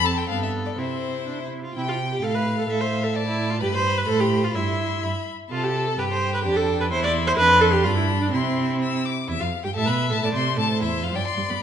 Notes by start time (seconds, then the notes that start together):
Already playing: F2 C4 A4
0.06 A5
0.17 G5
0.29 G2 B3 A4 F5
0.43 E5
0.66 D5
0.76 C3 C4 E4 C5
1.27 D4
1.40 E4
1.64 F4
1.75 C3 E4 G5
1.88 F4
2.12 G4
2.22 A2 A4 F5
2.35 B4
2.58 A4
2.68 A2 A4 E5 F5
2.81 C5
3.04 A4
3.15 D5 A5
3.27 E4
3.50 F4
3.61 G2 G4 B4 B5
3.75 C5
3.98 B4
4.08 A2 A4 C5
4.21 G4
4.45 F4
4.55 G2 E4 E5 C6
5.03 G2 B5
5.51 C3 F4 A4 A5
5.64 G4
5.87 A4
5.98 G2 G4 B4 G5
6.11 C5
6.34 B4
6.44 F2 D4 G4
6.56 A4
6.81 B4
6.91 E2 E4 C5 C6
7.03 D5
7.27 C5
7.37 F2 D4 B4 C6
7.61 A4
7.73 G4
7.84 G2 D4 F4 B5
7.96 E4
8.21 D4
8.32 C3 C4 E4 C6
8.82 E6
9.06 D6
9.28 E2 E4 E5
9.40 F2 F4 F5
9.64 G2 G4 G5
9.75 A2 A4 E5 A5
9.86 B2 B4 B5
10.10 A2 A4 A5
10.21 A2 A4 D5 A5
10.34 C3 C5 C6
10.57 A2 A4 A5
10.71 C5
10.81 E2 E4 E5
11.02 F2 F4 F5
11.13 G2 F3 D5 G5
11.28 C6
11.37 G2 G3
11.50 G2 B3 B5